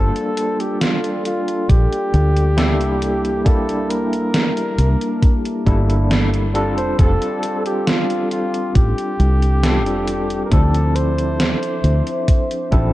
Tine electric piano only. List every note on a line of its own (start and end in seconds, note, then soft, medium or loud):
0.00 2.52 G3 medium
0.00 2.52 A#3 medium
0.00 2.53 D4 medium
0.00 2.53 F4 medium
0.00 2.53 A4 medium
2.57 3.40 G3 medium
2.57 3.40 A#3 medium
2.57 3.41 D4 medium
2.57 3.41 E4 medium
2.57 3.41 A4 loud
3.44 5.61 G3 medium
3.44 5.61 A#3 medium
3.44 5.61 D4 medium
3.44 5.62 E4 medium
3.44 5.62 G4 medium
5.66 6.49 G3 medium
5.66 6.49 A#3 medium
5.66 6.50 D4 medium
5.66 6.50 E4 medium
5.66 6.50 A4 loud
6.54 6.93 G3 medium
6.54 6.93 C4 medium
6.54 6.94 D4 medium
6.54 6.94 F4 medium
6.54 6.94 A4 loud
6.98 9.58 G3 medium
6.98 9.58 C4 medium
6.98 9.58 D4 medium
6.98 9.59 F4 medium
6.98 9.59 A4 medium
9.63 10.46 G3 medium
9.63 10.46 C4 medium
9.63 10.47 D4 medium
9.63 10.47 F4 medium
9.63 10.47 A4 loud
10.50 12.67 F3 medium
10.50 12.67 C4 medium
10.50 12.67 D4 medium
10.50 12.68 E4 medium
10.50 12.68 A4 medium
12.71 12.93 F3 medium
12.71 12.93 C4 medium
12.71 12.93 D4 medium
12.71 12.93 E4 medium
12.71 12.93 A4 loud